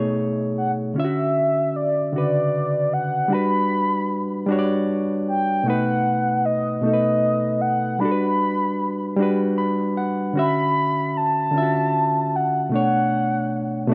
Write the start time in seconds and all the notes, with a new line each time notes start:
Already playing: B2 A3 D#4 G#4 C#5 D#5
0.58 F#5
0.94 D3 C#4 F4 E5
1.00 E5
1.05 F#4
1.76 D5
2.12 C#3 D3 F#4 D5
2.18 B4
2.93 F#5
3.28 G3 D4
3.32 F#4 B4 B5
4.46 G3 D4
4.50 F#4 C#5
4.59 D5
5.28 G5
5.64 B2 A3 F#5
5.68 D#4 B4
6.45 D#5
6.81 B2 A3 D#5
6.85 D#4 A4
6.94 B4
7.61 F#5
7.99 G3 D4 F#4 B5
8.05 A4
8.12 B4
9.16 G3 D4 F#4
9.23 B4
9.58 B5
9.97 F#5
10.33 D3 C#4
10.37 F#4 E5 B5
11.17 A5
11.51 D3 C#4
11.55 F4 E5
11.62 F#4
12.36 F#5
12.69 B2 A3
12.74 D4 C#5 F#5
13.88 B2 A3